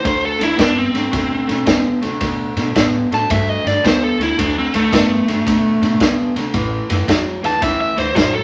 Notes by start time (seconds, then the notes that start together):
0.04 D2 D3 A3 C5, kick, snare, ride
0.25 A4
0.39 D2 D3 A3, snare, ride
0.43 E4
0.57 G2 D3 B3 D4, kick, snare, ride
0.78 C4
0.94 G2 D3 A3, snare, ride
1.11 B2 D3 A3, kick, snare, ride
1.48 B2 D3 A3, snare, ride
1.66 D3 B3, kick, snare, ride
2.02 C3 D3 A3, snare, ride
2.20 B2 D3 A3, kick, snare, ride
2.56 B2 D3 A3, snare, ride
2.75 A2 D3 B3, kick, snare, ride
3.10 A2 D3 A3 A5, snare, ride
3.30 G2 D3 A3 E5, kick, snare, ride
3.49 D#5
3.64 G2 D3 A3 D5, snare, ride
3.84 D2 D3 B3 C5, kick, snare, ride
4.04 A4
4.18 D2 D3 A3 E4, snare, ride
4.37 D2 D3 A3 D4, kick, snare, ride
4.58 C4
4.74 D2 D3 A3, snare, ride
4.92 G2 D3 A3 B3, kick, snare, ride
5.27 G2 D3 A3, snare, ride
5.47 B2 D3 A3, kick, snare, ride
5.82 B2 D3 A3, snare, ride
6.00 C3 D3 B3, kick, snare, ride
6.35 C3 D3 A3, snare, ride
6.54 A1 A2 E3, kick, snare, ride
6.89 F#2 A2 E3, snare, ride
7.07 E2 A2 F#3, kick, snare, ride
7.42 E2 A2 E3 A5, snare, ride
7.61 D2 A2 E3 E5, kick, snare, ride
7.81 E5
7.96 D2 A2 E3 C5, snare, ride
8.15 A1 A2 F#3 C5, kick, snare, ride
8.34 A4